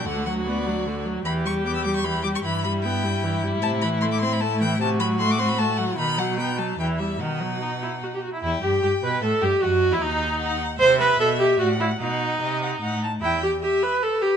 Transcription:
<<
  \new Staff \with { instrumentName = "Violin" } { \time 3/4 \key e \dorian \tempo 4 = 151 fis''8 fis''8 d''4. r8 | b''8 cis'''8 d'''16 e'''16 d'''16 cis'''16 b''8 d'''16 cis'''16 | b''8 b''8 g''4. r8 | \key e \minor a''8 b''8 c'''16 d'''16 c'''16 b''16 a''8 g''8 |
a''8 b''8 c'''16 d'''16 c'''16 b''16 a''8 fis''8 | b''8 fis''8 g''8 a''8 g''8 e''8 | fis''2~ fis''8 r8 | g''2 e''4 |
dis''2 fis''4 | e''2 d''4 | dis''2~ dis''8 r8 | g''4 e''4 b'4 | }
  \new Staff \with { instrumentName = "Violin" } { \time 3/4 \key e \dorian fis'2. | g'2. | e'2.~ | \key e \minor e'2. |
fis'2. | dis'2 e'4 | dis'2~ dis'8 r8 | e'8 g'8 g'8 b'8 a'8 g'8 |
fis'8. e'16 dis'4. r8 | e''2 fis''4 | fis''4 dis''8 fis''8 fis''8 a''8 | g''8 r2 r8 | }
  \new Staff \with { instrumentName = "Viola" } { \time 3/4 \key e \dorian d8 fis8 b8 fis8 d8 fis8 | e8 g8 b8 g8 e8 g8 | e8 g8 b8 g8 e8 g8 | \key e \minor c8 e8 a8 c'8 a8 e8 |
c8 fis8 a8 c'8 a8 fis8 | dis8 fis8 b8 fis8 e8 g8 | dis8 fis8 dis'8 e'8 fis'16 g'16 fis'16 e'16 | e'8 g'8 g'8 b'8 a'8 g'8 |
fis'8. e'16 dis'4. r8 | c''8 b'8 a'8 g'8 fis'8 e'8 | dis'2~ dis'8 r8 | e'8 g'8 g'8 b'8 a'8 g'8 | }
  \new Staff \with { instrumentName = "Cello" } { \clef bass \time 3/4 \key e \dorian d,2. | e,2. | g,2. | \key e \minor a,2.~ |
a,2. | b,2 e,4 | b,2~ b,8 r8 | e,8 g,8 g,8 b,8 a,8 g,8 |
fis,8. e,16 dis,4. r8 | c4 b,4 a,4 | b,4 c4 a,4 | e,4 r2 | }
>>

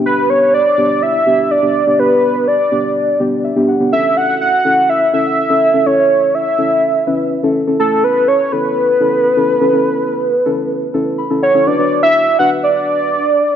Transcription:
<<
  \new Staff \with { instrumentName = "Soft synth lead" } { \time 4/4 \key a \mixolydian \tempo 4 = 124 b'8 cis''8 d''4 e''4 d''4 | b'4 d''4. r4. | e''8 fis''8 fis''4 e''8 e''4. | cis''4 e''2 r4 |
a'8 b'8 cis''8 b'2~ b'8~ | b'2. r8 cis''8 | d''8. e''8. fis''8 d''2 | }
  \new Staff \with { instrumentName = "Synth keys" } { \time 4/4 \key a \mixolydian << { r1 | r2. e''8 fis''8 | r1 | r1 |
r1 | r2. b''8 fis''8 | r1 | } \\ { <b d' g'>4 r8 <b d' g'>8. r16 <b d' g'>8 r16 <b d' g'>8 <b d' g'>16 | <b d' g'>4~ <b d' g'>16 r16 <b d' g'>8. r16 <b d' g'>8 r16 <b d' g'>8 <b d' g'>16 | <cis' e' a'>4~ <cis' e' a'>16 r16 <cis' e' a'>8. r16 <cis' e' a'>8 r16 <cis' e' a'>8 <cis' e' a'>16 | <cis' e' a'>4~ <cis' e' a'>16 r16 <cis' e' a'>8. r16 <cis' e' b'>8 r16 <cis' e' a'>8 <cis' e' a'>16 |
<cis' e' a'>4~ <cis' e' a'>16 r16 <cis' e' a'>8. r16 <cis' e' a'>8 r16 <cis' e' a'>8 <cis' e' a'>16 | <cis' e' a'>4~ <cis' e' a'>16 r16 <cis' e' a'>8. r16 <cis' e' a'>8 r16 <cis' e' a'>8 <cis' e' a'>16 | <d' fis' b'>16 <d' fis' b'>4 r16 <d' fis' b'>4. r4 | } >> }
>>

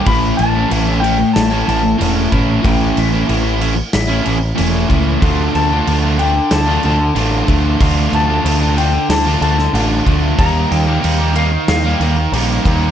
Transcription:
<<
  \new Staff \with { instrumentName = "Electric slide guitar" } { \time 4/4 \key d \phrygian \tempo 4 = 93 b''8 a''4 g''8 a''8 a''4 r8 | g''8 e''4. e''4. r8 | c'''8 a''4 g''8 a''8 a''4 r8 | c'''8 a''4 g''8 a''8 a''4 r8 |
bes''8 g''4 f''8 f''2 | }
  \new Staff \with { instrumentName = "Distorted electric guitar" } { \time 4/4 \key d \phrygian <a, e a cis' e'>8. <a cis' e'>16 <a, e a cis' e'>16 <a cis' e'>16 <e a cis' e'>8. <a cis' e'>16 <e a cis' e'>8 <a, e a cis' e'>8 <e a cis' e'>8 | <a, e a cis' e'>8. <a cis' e'>16 <a, e a cis' e'>16 <a cis' e'>16 <e a cis' e'>8. <a cis' e'>16 <e a cis' e'>8 <a, e a cis' e'>8 <e a cis' e'>8 | <d a d' f'>8. <a d' f'>16 <d a d' f'>16 <a d' f'>16 <d a d' f'>8. <a d' f'>16 <d a d' f'>8 <d a d' f'>8 <d a d' f'>8 | <d a d' f'>8. <a d' f'>16 <d a d' f'>16 <a d' f'>16 <d a d' f'>8. <a d' f'>16 <d a d' f'>8 <d a d' f'>8 <d a d' f'>8 |
<ees g bes ees'>8. <g bes ees'>16 <ees g bes ees'>16 <g bes ees'>16 <ees g bes ees'>8. <g bes ees'>16 <ees g bes ees'>8 <ees g bes ees'>8 <ees g bes ees'>8 | }
  \new Staff \with { instrumentName = "Picked electric bass" } { \clef bass \time 4/4 \key d \phrygian a,,8 a,,8 a,,4 a,,8 a,,8 e,,8 a,,8 | a,,8 a,,8 a,,4 a,,8 a,,8 e,,8 cis,8 | d,8 d,8 d,4 d,8 d,8 a,,8 d,8 | d,8 d,8 d,4 d,8 d,8 a,,8 d,8 |
ees,8 ees,8 ees,4 ees,8 ees,8 bes,,8 ees,8 | }
  \new DrumStaff \with { instrumentName = "Drums" } \drummode { \time 4/4 <cymc bd>8 cymc8 cymc8 cymc8 <cymc sn>8 cymc8 cymc8 <cymc bd>8 | <cymc bd>8 cymc8 cymc8 cymc8 <cymc sn>8 cymc8 cymc8 <cymc bd>8 | <cymc bd>8 cymc8 cymc8 cymc8 <cymc sn>8 cymc8 cymc8 <cymc bd>8 | <cymc bd>8 cymc8 cymc8 cymc8 <cymc sn>8 cymc16 sn16 cymc8 <cymc bd>8 |
<cymc bd>8 cymc8 cymc8 cymc8 <cymc sn>8 cymc8 cymc8 <cymc bd>8 | }
>>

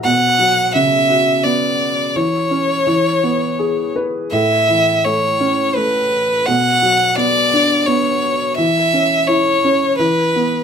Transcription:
<<
  \new Staff \with { instrumentName = "Violin" } { \time 3/4 \key b \dorian \tempo 4 = 85 fis''4 e''4 d''4 | cis''2~ cis''8 r8 | e''4 cis''4 b'4 | fis''4 d''4 cis''4 |
e''4 cis''4 b'4 | }
  \new Staff \with { instrumentName = "Felt piano" } { \time 3/4 \key b \dorian b,8 fis8 cis8 fis'8 b4 | e8 cis'8 e8 b8 gis'8 b'8 | a,8 e8 a8 cis'8 a4 | b,8 fis8 b8 d'8 b4 |
e8 cis'8 e'8 cis'8 e8 b8 | }
>>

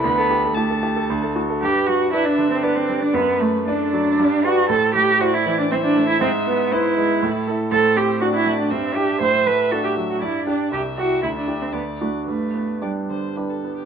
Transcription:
<<
  \new Staff \with { instrumentName = "Violin" } { \time 3/4 \key g \major \tempo 4 = 118 b''4 a''4. r8 | b'4 e''4 d''4 | b'4 a'4 g'8 b'8 | c''4 d''4 e''4~ |
e''4 c''8 b'8 a'4 | c''4 d''4 e''4~ | e''2 d''4 | e''2 d''4 |
b'4 d''8 c''8 b'16 a'8 g'16 | }
  \new Staff \with { instrumentName = "Cello" } { \time 3/4 \key g \major b4 a4. r8 | g'8 fis'8 e'16 d'8 c'16 b16 c'8 d'16 | b8 a8 d'4. fis'8 | a'8 g'8 fis'16 e'8 d'16 c'16 d'8 e'16 |
c'8 b8 e'4. r8 | a'8 g'8 fis'16 e'8 d'16 c'8 g'8 | c''8 b'8 a'16 g'8 fis'16 e'8 d'8 | g'8 fis'8 e'16 d'8 c'16 b8 a8 |
a4 g4 r4 | }
  \new Staff \with { instrumentName = "Grand piano" } { \time 3/4 \key g \major d,16 a'16 g'16 a'16 g'16 a'16 g'16 a'16 d,16 a'16 fis'16 a'16 | g,8 g8 <d' b'>8 d8 <d' b'>8 g8 | fis,8 a8 <d' d''>8 fis8 g,8 <g' d''>8 | a,8 a8 <e' c''>8 e8 <e' c''>8 a8 |
gis,8 b8 <e' b'>8 gis8 a,8 <e' a'>8 | a,8 c'8 <d' fis'>8 a8 g,8 <d' g'>8 | a,8 a8 <d' fis'>8 fis8 g,8 <d' g'>8 | c,8 <e' g'>8 d,8 <d' g'>8 d,8 <d' fis'>8 |
g,8 b8 <d' g'>8 d8 <d' g'>8 b8 | }
>>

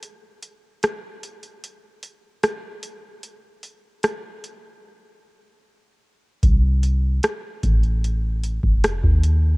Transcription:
<<
  \new Staff \with { instrumentName = "808-style bass" } { \clef bass \time 4/4 \key f \lydian \tempo 4 = 75 r1 | r1 | c,4 r8 a,,4~ a,,16 f,,8 ees,8. | }
  \new DrumStaff \with { instrumentName = "Drums" } \drummode { \time 4/4 hh8 hh8 <hh ss>8 hh16 hh16 hh8 hh8 <hh ss>8 hh8 | hh8 hh8 <hh ss>8 hh8 r4 r4 | <hh bd>8 hh8 <hh ss>8 <hh bd>16 hh16 hh8 hh16 bd16 <hh ss>16 bd16 hh8 | }
>>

